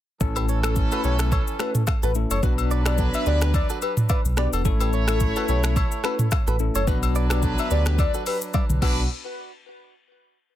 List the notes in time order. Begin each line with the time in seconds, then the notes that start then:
0.20 A1 E3 A3 C#4 E4 A4, kick, shaker
0.36 G4 B4, high agogo, shaker
0.48 A4 C#5, shaker
0.63 A3 C#4 E4 A4, finger snap, cross-stick, high agogo, shaker
0.76 kick, shaker
0.92 F#4 A4 B4, high agogo, shaker
1.04 B1 A3 C#4 E4 G4 A4 B4 C#5, shaker
1.19 finger snap, cross-stick, shaker
1.32 A4 C#5, kick, high agogo, shaker
1.47 shaker
1.59 A3 C#4 E4 F#4 A4 B4, finger snap, cross-stick, high agogo, shaker
1.75 mid tom, shaker
1.87 finger snap, kick, cross-stick, high agogo, low woodblock, shaker
2.03 A1 F#4 A4 B4, shaker
2.15 A3 C#4 E4 A4, shaker
2.30 F#1 A4 C#5, high agogo, shaker
2.43 B1 F#3 B3 D4 F#4 B4, kick, shaker
2.58 high agogo, shaker
2.71 B4 D5, shaker
2.86 B3 D4 F#4 G4 B4 D5, finger snap, cross-stick, high agogo, shaker
2.98 F#4 A4, kick, shaker
3.14 E5, high agogo, shaker
3.26 D2 B3 D4 F#4 G4 B4 D5, shaker
3.41 G4 B4, finger snap, cross-stick, shaker
3.54 D5, kick, high agogo, shaker
3.70 F#4 A4, shaker
3.82 G4 B4, high agogo, shaker
3.97 mid tom, shaker
4.09 B4 D5, kick, high agogo, low woodblock, shaker
4.25 B1, shaker
4.37 B3 D4 F#4 G4 B4 D5, finger snap, cross-stick, shaker
4.53 E1 F#4 A4, high agogo, shaker
4.65 A1 A3 C#4 E4 A4 C#5, kick, shaker
4.80 G4 B4, high agogo, shaker
4.93 A4 C#5, shaker
5.08 A3 C#4 E4 A4, finger snap, cross-stick, high agogo, shaker
5.20 kick, shaker
5.36 F#4 A4 B4, high agogo, shaker
5.48 B1 A3 C#4 E4 G4 A4 B4 C#5, shaker
5.63 finger snap, cross-stick, shaker
5.76 A4 C#5, kick, high agogo, shaker
5.92 shaker
6.04 A3 C#4 E4 F#4 A4 B4, finger snap, cross-stick, high agogo, shaker
6.19 mid tom, shaker
6.31 finger snap, kick, cross-stick, high agogo, low woodblock, shaker
6.47 A1 F#4 A4 B4, shaker
6.59 A3 C#4 E4 A4, shaker
6.75 F#1 A4 C#5, high agogo, shaker
6.87 B1 F#3 B3 D4 F#4 B4, kick, shaker
7.03 high agogo, shaker
7.15 B4 D5, shaker
7.30 B3 D4 F#4 G4 B4 D5, finger snap, cross-stick, high agogo, shaker
7.42 F#4 A4, kick, shaker
7.58 E5, high agogo, shaker
7.70 D2 B3 D4 F#4 G4 B4 D5, shaker
7.86 G4 B4, finger snap, cross-stick, shaker
7.99 D5, kick, high agogo, shaker
8.14 F#4 A4, shaker
8.26 G4 B4, open hi-hat, high agogo, shaker
8.42 shaker
8.54 B4 D5, kick, high tom, high agogo, low woodblock, shaker
8.69 B1, mid tom, shaker
8.82 B1 F#3 B3 D4 F#4 B4, kick, crash, high agogo